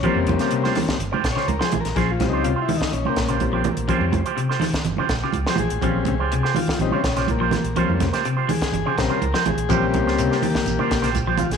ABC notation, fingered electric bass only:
X:1
M:4/4
L:1/16
Q:1/4=124
K:Bbdor
V:1 name="Fingered electric bass" clef=bass
z F,,2 z4 z G,,, z B,,, z D,, z B,,, B,,, | B,,,3 D,,2 z3 B,,, z B,,,4- B,,, B,,, | z F,,2 z4 z G,,, z B,,, z D,, z B,,, B,,, | B,,,3 D,,2 z3 B,,, z B,,,4- B,,, B,,, |
z F,,2 z4 z G,,, z B,,, z D,, z B,,, B,,, | B,,,3 D,,2 z3 B,,, z B,,,4- B,,, B,,, |]